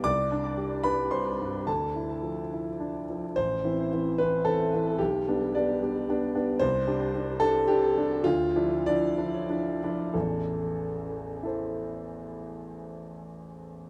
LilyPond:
<<
  \new Staff \with { instrumentName = "Grand piano" } { \time 3/4 \key a \minor \tempo 4 = 107 << { <d'' d'''>4. <b' b''>8 <c'' c'''>4 | <a' a''>2~ <a' a''>8 r8 | c''4. b'8 a'4 | g'4 d''4. r8 |
c''4. a'8 g'4 | f'4 d''4. r8 | a'2.~ | a'2. | } \\ { r2. | r2. | r2. | r2. |
r2. | r2. | r2 <e' a' c''>4~ | <e' a' c''>2. | } >> }
  \new Staff \with { instrumentName = "Grand piano" } { \time 3/4 \key a \minor c,8 d'8 g8 d'8 g8 g,8 | d,8 e'8 f8 e'8 d'8 f8 | a,,8 <e c' e'>8 <e c' e'>8 <e c' e'>8 <e c' e'>8 <e c' e'>8 | b,,8 <g b d'>8 <g b d'>8 <g b d'>8 <g b d'>8 <g b d'>8 |
c,8 <g d'>8 <g d'>8 <g d'>8 <g d'>8 <g d'>8 | d,8 <f d' e'>8 <f d' e'>8 <f d' e'>8 <f d' e'>8 <f d' e'>8 | <a,, e,>2.~ | <a,, e,>2. | }
>>